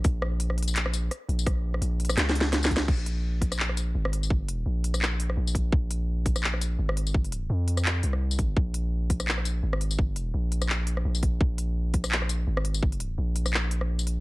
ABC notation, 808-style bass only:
X:1
M:4/4
L:1/8
Q:"Swing 16ths" 1/4=169
K:Bbm
V:1 name="808-style bass" clef=bass
B,,,6 z B,,,- | B,,,2 B,,,2 D,,4 | B,,,6 A,,,2- | A,,,2 B,,,4 B,,,2 |
B,,,6 A,,,2- | A,,,2 F,,3 C,,3 | B,,,6 A,,,2- | A,,,2 B,,,4 B,,,2 |
B,,,6 A,,,2- | A,,,2 B,,,6 |]